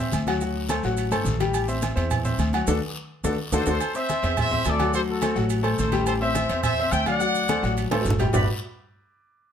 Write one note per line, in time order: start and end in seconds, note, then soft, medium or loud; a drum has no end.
0.00 0.10 E2 medium
0.00 0.23 C4 medium
0.00 0.23 C5 medium
0.00 0.23 E5 medium
0.12 0.78 D2 loud
0.12 high conga medium
0.12 low agogo medium
0.12 short guiro medium
0.12 maracas medium
0.27 0.39 F#3 medium
0.27 0.39 F#4 medium
0.27 0.39 F#5 medium
0.27 high conga medium
0.27 low agogo loud
0.27 short guiro medium
0.27 maracas soft
0.41 0.65 F#3 medium
0.41 0.65 F#4 medium
0.41 0.65 F#5 medium
0.41 long guiro medium
0.41 maracas medium
0.55 high conga soft
0.69 0.81 A3 medium
0.69 0.81 A4 medium
0.69 0.82 C5 medium
0.69 high conga medium
0.69 low agogo loud
0.69 short guiro medium
0.69 maracas medium
0.83 1.10 A1 loud
0.83 1.07 F#3 medium
0.83 1.08 F#4 medium
0.83 1.08 F#5 medium
0.83 short guiro medium
0.83 maracas soft
0.97 high conga soft
0.97 low agogo medium
0.97 long guiro medium
0.97 maracas medium
1.11 1.24 G1 medium
1.11 1.35 A3 medium
1.11 1.35 A4 medium
1.11 1.35 C5 medium
1.11 high conga soft
1.11 low agogo loud
1.11 maracas medium
1.25 1.91 A1 medium
1.25 high conga medium
1.25 short guiro medium
1.25 maracas medium
1.40 1.63 G3 medium
1.40 1.64 G4 loud
1.40 1.64 G5 medium
1.40 high conga medium
1.40 low agogo medium
1.40 short guiro medium
1.40 maracas soft
1.54 high conga soft
1.54 low agogo loud
1.54 long guiro medium
1.54 maracas medium
1.68 1.92 C4 medium
1.68 1.92 C5 medium
1.68 1.92 E5 medium
1.68 high conga soft
1.68 maracas medium
1.82 high conga loud
1.82 low agogo medium
1.82 short guiro medium
1.82 maracas medium
1.96 2.36 E2 loud
1.96 2.19 C4 medium
1.96 2.19 C5 medium
1.96 2.20 E5 medium
1.96 low agogo medium
1.96 short guiro medium
1.96 maracas soft
2.11 high conga soft
2.11 low conga medium
2.11 low agogo loud
2.11 long guiro medium
2.11 maracas medium
2.25 2.48 C4 medium
2.25 2.48 C5 medium
2.25 2.48 E5 medium
2.25 high conga soft
2.25 low conga medium
2.25 maracas medium
2.38 2.65 D2 medium
2.38 high conga medium
2.38 low agogo medium
2.38 short guiro medium
2.38 maracas medium
2.53 2.65 F#3 medium
2.53 2.66 F#4 medium
2.53 2.66 F#5 medium
2.53 high conga medium
2.53 low agogo loud
2.53 short guiro medium
2.53 maracas soft
2.67 2.78 D2 loud
2.67 2.77 D4 loud
2.67 2.77 F#4 loud
2.67 2.77 A4 loud
2.67 high conga loud
2.67 high timbale loud
2.67 long guiro loud
2.67 maracas loud
3.24 3.35 D2 loud
3.24 3.34 D4 loud
3.24 3.34 F#4 medium
3.24 3.34 A4 loud
3.24 high conga loud
3.24 high timbale loud
3.24 long guiro medium
3.24 maracas loud
3.52 3.63 D2 loud
3.52 3.62 D4 loud
3.52 3.62 F#4 loud
3.52 3.62 A4 loud
3.52 3.66 A4 medium
3.52 3.66 C5 medium
3.52 high conga loud
3.52 high timbale loud
3.52 long guiro loud
3.52 maracas loud
3.66 3.77 D2 loud
3.66 3.76 D4 medium
3.66 3.76 F#4 medium
3.66 3.76 A4 medium
3.66 3.94 A4 medium
3.66 3.94 C5 loud
3.66 high conga loud
3.66 high timbale loud
3.66 long guiro loud
3.66 maracas loud
3.80 high conga soft
3.80 low agogo loud
3.80 long guiro medium
3.80 maracas medium
3.95 4.18 C4 medium
3.95 4.38 C5 medium
3.95 4.19 C5 medium
3.95 4.19 E5 medium
3.95 4.38 E5 loud
3.95 high conga soft
3.95 maracas medium
4.09 high conga loud
4.09 low agogo medium
4.09 short guiro medium
4.09 maracas medium
4.22 4.63 E2 medium
4.22 4.46 C4 medium
4.22 4.47 C5 medium
4.22 4.47 E5 medium
4.22 low agogo medium
4.22 short guiro medium
4.22 maracas soft
4.37 4.65 C5 medium
4.37 4.65 E5 loud
4.37 high conga soft
4.37 low conga medium
4.37 low agogo loud
4.37 long guiro medium
4.37 maracas medium
4.51 4.75 C4 medium
4.51 4.75 C5 medium
4.51 4.75 E5 medium
4.51 high conga soft
4.51 low conga medium
4.65 5.31 D2 medium
4.65 4.93 A4 medium
4.65 4.95 D5 loud
4.65 high conga medium
4.65 low timbale medium
4.65 low agogo medium
4.65 short guiro medium
4.65 maracas medium
4.79 4.91 F#3 medium
4.79 4.91 F#4 loud
4.79 4.91 F#5 medium
4.79 high conga medium
4.79 low agogo loud
4.79 short guiro medium
4.79 maracas soft
4.93 5.17 F#3 medium
4.93 5.17 F#4 medium
4.93 5.00 A4 medium
4.93 5.01 C5 loud
4.93 5.17 F#5 medium
4.93 high conga soft
4.93 long guiro medium
4.93 maracas medium
5.09 5.48 F#4 medium
5.09 5.48 A4 medium
5.09 high conga soft
5.22 5.34 A3 medium
5.22 5.34 A4 medium
5.22 5.34 C5 medium
5.22 high conga loud
5.22 low agogo loud
5.22 short guiro medium
5.22 maracas medium
5.35 5.75 A1 loud
5.35 5.59 F#3 medium
5.35 5.59 F#4 medium
5.35 5.59 F#5 medium
5.35 short guiro medium
5.35 maracas soft
5.50 high conga soft
5.50 low agogo medium
5.50 long guiro medium
5.50 maracas medium
5.63 5.87 A3 medium
5.63 5.87 A4 medium
5.63 5.87 C5 medium
5.63 high conga soft
5.63 low agogo loud
5.78 6.44 A1 medium
5.78 6.06 A4 medium
5.78 6.05 C5 medium
5.78 high conga medium
5.78 short guiro medium
5.78 maracas medium
5.92 6.16 G3 medium
5.92 6.16 G4 medium
5.92 6.16 G5 medium
5.92 high conga medium
5.92 low agogo medium
5.92 short guiro medium
5.92 maracas soft
6.06 6.14 A4 medium
6.06 6.13 C5 loud
6.06 high conga soft
6.06 low agogo loud
6.06 long guiro medium
6.06 maracas medium
6.21 6.45 C4 medium
6.21 6.45 C5 medium
6.21 6.62 C5 medium
6.21 6.61 E5 loud
6.21 6.45 E5 medium
6.21 high conga soft
6.35 high conga loud
6.35 low agogo medium
6.35 short guiro medium
6.35 maracas medium
6.49 6.89 E2 medium
6.49 6.73 C4 medium
6.49 6.73 C5 medium
6.49 6.73 E5 medium
6.49 low agogo medium
6.49 short guiro medium
6.49 maracas soft
6.63 6.91 C5 medium
6.63 6.90 E5 loud
6.63 high conga soft
6.63 low conga medium
6.63 low agogo loud
6.63 long guiro medium
6.63 maracas medium
6.78 7.02 C4 medium
6.78 7.02 C5 medium
6.78 7.02 E5 medium
6.78 high conga soft
6.91 7.57 D2 medium
6.91 7.07 E5 medium
6.91 7.06 G5 loud
6.91 high conga medium
6.91 low agogo medium
6.91 short guiro medium
6.91 maracas medium
7.06 7.18 F#3 medium
7.06 7.18 F#4 medium
7.06 7.74 D5 medium
7.06 7.19 F#5 medium
7.06 7.73 F#5 loud
7.06 high conga medium
7.06 low agogo loud
7.06 short guiro medium
7.06 maracas soft
7.20 7.43 F#3 medium
7.20 7.44 F#4 medium
7.20 7.44 F#5 medium
7.20 high conga soft
7.20 long guiro medium
7.20 maracas medium
7.35 high conga soft
7.35 maracas medium
7.48 7.60 A3 medium
7.48 7.60 A4 medium
7.48 7.61 C5 medium
7.48 high conga loud
7.48 low agogo loud
7.48 short guiro medium
7.48 maracas medium
7.63 7.89 A1 medium
7.63 7.86 F#3 medium
7.63 7.86 F#4 medium
7.63 7.86 F#5 medium
7.63 short guiro medium
7.63 maracas soft
7.77 high conga soft
7.77 low agogo medium
7.77 long guiro medium
7.77 maracas medium
7.91 8.04 A1 medium
7.91 8.14 A3 medium
7.91 8.14 A4 medium
7.91 8.15 C5 medium
7.91 high conga loud
7.91 high timbale loud
7.91 low agogo loud
8.01 low timbale medium
8.01 short guiro medium
8.05 8.30 G1 medium
8.05 maracas medium
8.10 low conga loud
8.19 8.31 G3 medium
8.19 8.31 G4 medium
8.19 8.31 G5 medium
8.19 low conga medium
8.19 low timbale medium
8.19 low agogo medium
8.19 short guiro medium
8.19 maracas soft
8.33 8.46 G1 medium
8.33 8.46 G3 medium
8.33 8.46 D4 medium
8.33 8.46 F#4 medium
8.33 8.46 G4 medium
8.33 8.47 B4 medium
8.33 8.47 D5 loud
8.33 8.47 B5 medium
8.33 low conga loud
8.33 low timbale loud
8.33 long guiro loud
8.33 maracas loud